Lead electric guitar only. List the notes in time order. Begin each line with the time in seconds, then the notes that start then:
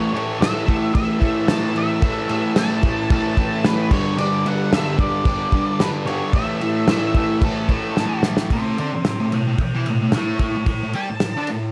Already playing: C#5
0.14 C#5
0.41 E5
0.95 E5
1.48 A5
1.77 E5
2.31 E5
2.58 A5
3.12 A5
3.66 B4
3.92 C#5
4.19 D5
4.47 F#5
4.74 E5
5.00 D5
5.80 B4
6.06 C#5
6.34 E5
6.88 E5
7.44 A4
8.53 G4 E5
8.80 G4 E5
9.08 G4 E5
9.33 E5 G5
9.61 E5 G5
9.87 E5 G5
10.14 C#5 A5
10.40 C#5 A5
10.67 C#5 A5
10.96 A5